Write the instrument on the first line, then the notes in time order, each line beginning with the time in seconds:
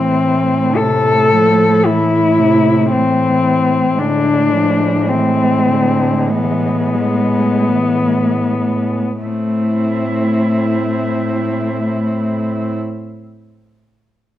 cello
Already playing: A2 E3 A3 C4
0.76 C3 A4
1.33 F3
1.85 E3 E4
2.38 C3
2.92 E3 C4
3.98 A2 D3 G#3 D4
4.53 F3
5.09 E3 C4
5.68 D3
6.30 E3 B3
6.96 G#3
7.70 E3
9.24 A2 A3 C4 E4